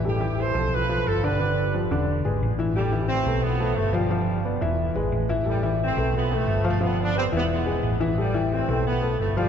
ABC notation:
X:1
M:4/4
L:1/8
Q:1/4=177
K:Am
V:1 name="Grand piano"
[G,GA] [E,Ee]2 [F,FA]2 [F,FA]2 [D,Dd] | [D,Dd]2 [F,FG] [D,Dd]2 [^G,^GB]2 [E,Ee] | [G,GA] [E,Ee]2 [A,AB]2 [A,AB]2 [F,Ff] | [F,Ff]2 [B,Bd] [E,Ee]2 [^G,^GB]2 [E,Ee] |
[G,GA] [E,Ee]2 [A,AB]2 [A,AB]2 [F,Ff] | [F,Ff]2 [B,Bd] [E,Ee]2 [^G,^GB]2 [E,Ee] | [G,GA] [E,Ee]2 [A,AB]2 [A,AB]2 [F,Ff] |]
V:2 name="Horn section"
[EG]2 [Ac]2 [FB]2 [FA] [GB]- | [GB]2 z6 | [E,G,]2 [A,C]2 [F,B,]2 [F,A,] [D,G,]- | [D,G,]2 z6 |
[E,G,]2 [A,C]2 [F,B,] [F,A,]2 [F,A,] | [G,B,] [B,D] [G,C] [G,B,] [^G,B,]3 z | [E,G,]2 [A,C]2 [F,B,]2 [F,A,] [D,G,] |]
V:3 name="Fingered electric bass" clef=bass
A,,,3 B,,,3 G,,,2- | G,,,3 E,,,2 ^G,,, A,,,2- | A,,,3 B,,,3 G,,,2- | G,,,3 E,,,2 ^G,,, A,,,2- |
A,,,3 B,,,3 G,,,2- | G,,,3 E,,,3 A,,,2- | A,,,3 B,,,3 G,,,2 |]